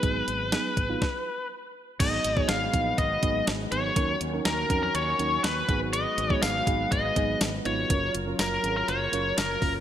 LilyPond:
<<
  \new Staff \with { instrumentName = "Lead electric guitar" } { \time 4/4 \key gis \dorian \tempo 4 = 122 b'2. r4 | dis''4 eis''4 dis''4 r8 cis''8~ | cis''8 r8 ais'8. ais'16 cis''4 b'8. r16 | dis''4 eis''4 dis''4 r8 cis''8~ |
cis''8 r8 ais'8. ais'16 cis''4 ais'8. r16 | }
  \new Staff \with { instrumentName = "Analog synth pad" } { \time 4/4 \key gis \dorian <gis fis' b'>2 r2 | <gis fis' b'>1 | <dis cis' fis'>2.~ <dis cis' fis'>8 <gis b'>8~ | <gis b'>1 |
<fis eis' ais'>1 | }
  \new Staff \with { instrumentName = "FM electric piano" } { \time 4/4 \key gis \dorian <fis b dis' gis'>4 <fis b dis' gis'>8. <fis b dis' eis'>16 r2 | <fis b dis' gis'>8. <fis b dis' gis'>8. <fis b dis' gis'>4 <fis b dis' gis'>4 <fis b dis' gis'>8 | <fis cis' dis' ais'>8. <fis cis' dis' ais'>8. <fis cis' dis' ais'>4 <fis cis' dis' ais'>4 <fis b dis' gis'>8~ | <fis b dis' gis'>8. <fis b dis' gis'>8. <fis b dis' gis'>4 <fis b dis' gis'>4 <fis b dis' eis'>8 |
<fis cis' eis' ais'>8. <fis cis' eis' ais'>8. <fis cis' eis' gis' ais'>4 <fis cis' eis' ais'>4 <fis cis' eis' ais'>8 | }
  \new Staff \with { instrumentName = "Fretless electric bass" } { \clef bass \time 4/4 \key gis \dorian gis,,8 gis,,8. r16 gis,,8 r2 | gis,,8 gis,,8 gis,,8 ais,,8 gis,,8 gis,,8 gis,,8 gis,,8 | dis,8 dis,8 dis,8 eis,8 dis,8 dis,8 dis,8 gis,,8~ | gis,,8 gis,,8 gis,,8 gis,,8 gis,,8 gis,,8 gis,,8 gis,,8 |
fis,,8 fis,,8 fis,,8 gis,,8 fis,,8 fis,,8 fis,,8 fis,,8 | }
  \new DrumStaff \with { instrumentName = "Drums" } \drummode { \time 4/4 <hh bd>8 hh8 <hh sn>8 <hh bd>8 <bd sn>4 r4 | <cymc hh bd>8 hh16 bd16 <hh sn>8 <hh bd>8 <hh bd>8 <hh bd>8 <hh sn>8 hh8 | <hh bd>8 hh8 <hh sn>8 <hh bd>8 hh8 hh8 <hh sn>8 <hh bd>8 | hh8 hh16 bd16 <hh sn tamb>8 <hh bd>8 <hh bd>8 <hh bd>8 <hh sn tamb>8 hh8 |
<hh bd>8 hh8 <hh sn tamb>8 hh8 hh8 hh8 <hh sn tamb>8 <hho bd>8 | }
>>